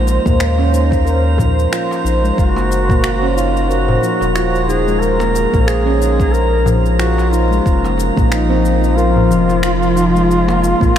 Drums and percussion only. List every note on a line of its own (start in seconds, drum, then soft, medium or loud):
0.07 darbuka ka soft
0.07 cabasa medium
0.26 kick loud
0.26 darbuka dum medium
0.26 cabasa soft
0.40 finger snap medium
0.40 cabasa soft
0.58 darbuka ka medium
0.58 darbuka tek soft
0.74 cabasa medium
0.91 kick medium
0.91 darbuka tek soft
0.91 cabasa soft
1.07 cabasa soft
1.38 kick medium
1.38 darbuka dum medium
1.38 cabasa medium
1.59 cabasa soft
1.73 finger snap medium
1.73 cabasa soft
1.91 darbuka ka medium
1.91 cabasa soft
2.06 cabasa medium
2.25 cabasa soft
2.38 kick loud
2.38 cabasa soft
2.56 darbuka ka medium
2.56 darbuka tek medium
2.56 cabasa soft
2.71 darbuka ka soft
2.71 cabasa medium
2.89 kick loud
2.89 darbuka dum medium
2.89 cabasa soft
3.04 finger snap medium
3.04 cabasa soft
3.23 darbuka ka soft
3.38 cabasa medium
3.57 cabasa soft
3.71 cabasa soft
3.88 darbuka dum medium
4.03 cabasa medium
4.21 darbuka ka soft
4.21 darbuka tek soft
4.21 cabasa soft
4.36 finger snap medium
4.36 cabasa soft
4.55 cabasa soft
4.69 darbuka ka soft
4.69 cabasa medium
4.88 cabasa soft
5.02 cabasa soft
5.19 finger snap soft
5.19 darbuka ka medium
5.19 darbuka tek medium
5.19 cabasa soft
5.35 darbuka ka soft
5.35 cabasa medium
5.54 kick loud
5.54 darbuka dum medium
5.54 cabasa soft
5.68 finger snap medium
5.68 cabasa soft
5.87 darbuka ka soft
5.87 darbuka tek soft
6.02 cabasa medium
6.20 kick loud
6.20 darbuka tek soft
6.20 cabasa soft
6.34 cabasa soft
6.66 darbuka dum medium
6.66 cabasa medium
6.86 cabasa soft
6.99 finger snap medium
6.99 cabasa soft
7.18 darbuka ka medium
7.18 cabasa soft
7.33 cabasa medium
7.52 cabasa soft
7.66 kick loud
7.66 cabasa soft
7.84 darbuka ka medium
7.84 darbuka tek medium
7.84 cabasa soft
7.98 darbuka ka medium
7.98 cabasa medium
8.17 kick medium
8.17 darbuka dum medium
8.17 cabasa soft
8.32 finger snap medium
8.32 cabasa soft
8.50 darbuka ka medium
8.65 cabasa medium
8.84 cabasa soft
8.98 cabasa soft
9.16 darbuka dum medium
9.31 cabasa medium
9.49 darbuka ka medium
9.49 darbuka tek soft
9.49 cabasa soft
9.63 finger snap loud
9.63 cabasa soft
9.83 cabasa soft
9.96 darbuka ka medium
9.96 cabasa medium
10.16 cabasa soft
10.31 cabasa soft
10.48 finger snap soft
10.48 darbuka ka medium
10.48 darbuka tek medium
10.48 cabasa soft
10.62 darbuka ka soft
10.62 cabasa medium
10.81 kick medium
10.81 darbuka dum medium
10.81 cabasa soft